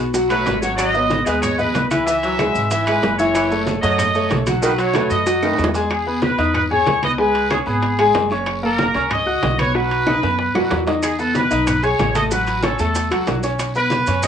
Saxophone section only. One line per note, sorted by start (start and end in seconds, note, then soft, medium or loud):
0.30 0.56 F#3 medium
0.78 1.04 F#3 medium
1.26 1.74 G#3 medium
2.07 2.15 E3 medium
2.23 2.60 F#3 medium
2.87 3.13 E3 medium
3.35 3.61 E3 medium
3.83 4.31 F#3 medium
4.62 4.71 D#3 medium
4.78 5.15 F#3 medium
5.43 5.68 D#3 medium